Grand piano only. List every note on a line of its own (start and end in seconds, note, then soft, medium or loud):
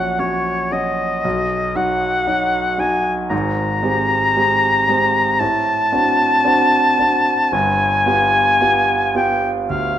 0.00 1.26 A#1 medium
0.00 0.15 F#3 medium
0.00 0.15 C#4 soft
0.00 0.15 F#4 medium
0.18 0.68 F#3 medium
0.18 0.68 C#4 medium
0.18 0.68 F#4 medium
0.72 1.20 F#3 soft
0.72 1.20 C#4 soft
0.72 1.20 F#4 medium
1.25 1.75 B1 medium
1.75 2.23 F#3 soft
1.75 2.24 D#4 soft
1.75 2.24 F#4 medium
2.27 2.76 F#3 medium
2.27 2.76 D#4 medium
2.27 2.76 F#4 medium
2.78 3.27 F#3 soft
2.78 3.27 D#4 soft
2.78 3.27 F#4 medium
3.29 3.81 G#1 medium
3.29 3.82 G#2 medium
3.82 4.31 G#3 medium
3.82 4.31 C4 medium
3.82 4.32 G4 medium
4.36 4.84 G#3 soft
4.36 4.84 C4 soft
4.36 4.85 G4 medium
4.88 5.36 G#3 medium
4.88 5.37 C4 medium
4.88 5.37 G4 medium
5.40 5.91 A2 medium
5.92 6.41 C4 medium
5.92 6.42 D4 medium
5.92 6.42 F#4 medium
6.45 6.95 C4 medium
6.45 6.95 D4 medium
6.45 6.96 F#4 medium
6.99 7.49 C4 soft
6.99 7.49 D4 soft
6.99 7.49 F#4 medium
7.52 8.05 G1 medium
7.52 8.05 G2 medium
8.06 8.56 B3 medium
8.06 8.57 F4 medium
8.06 8.57 G4 medium
8.61 9.11 B3 medium
8.61 9.12 F4 medium
8.61 9.12 G4 medium
9.15 9.66 B3 medium
9.15 9.66 F4 medium
9.15 9.66 G4 medium
9.70 9.99 D2 medium